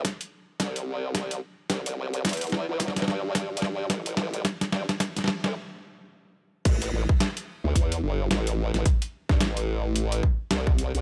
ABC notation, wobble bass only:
X:1
M:4/4
L:1/16
Q:"Swing 16ths" 1/4=109
K:Am
V:1 name="Wobble bass" clef=bass
z4 C,,6 z2 C,,4 | E,,3 E,,3 G,,2 G,,4 A,,,4 | z2 G,, z4 D,, z8 | A,,,2 A,,, z4 D,, E,,2 G,,,2 A,,,3 A,,, |
z3 G,, A,,,6 z2 C,,3 C,, |]